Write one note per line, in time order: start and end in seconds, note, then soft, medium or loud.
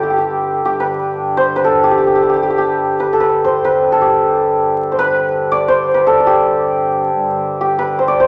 0.00 0.61 G2 medium
0.00 0.61 D3 medium
0.00 1.26 F4 medium
0.00 0.09 G4 soft
0.00 1.64 A4 medium
0.00 0.80 B4 medium
0.10 0.18 G4 soft
0.18 0.65 G4 soft
0.63 7.11 G2 medium
0.63 7.11 D3 medium
0.63 1.83 G4 medium
0.80 1.43 B4 medium
1.37 1.62 C5 medium
1.56 2.99 B4 medium
1.64 3.12 A4 medium
1.84 1.91 G4 medium
1.91 1.98 G4 soft
1.98 2.06 G4 soft
2.07 2.15 G4 soft
2.15 2.22 G4 soft
2.23 2.29 G4 soft
2.29 2.36 G4 medium
2.36 2.43 G4 soft
2.43 2.50 G4 soft
2.50 2.58 G4 soft
2.58 4.01 G4 medium
3.00 3.20 B4 medium
3.13 3.92 A4 medium
3.20 3.51 B4 medium
3.45 3.71 C5 medium
3.65 4.98 B4 medium
3.92 6.06 A4 medium
4.01 6.26 G4 medium
4.92 5.05 C5 medium
4.99 5.74 B4 medium
5.52 7.98 D5 medium
5.68 6.00 C5 medium
5.94 7.78 B4 medium
6.07 6.20 A4 medium
6.20 8.27 A4 soft
6.27 7.60 G4 medium
7.12 8.27 G2 medium
7.12 8.27 D3 medium
7.61 8.27 G4 medium
7.79 8.05 B4 medium
7.99 8.19 C5 medium
8.08 8.27 D5 medium
8.20 8.27 C5 medium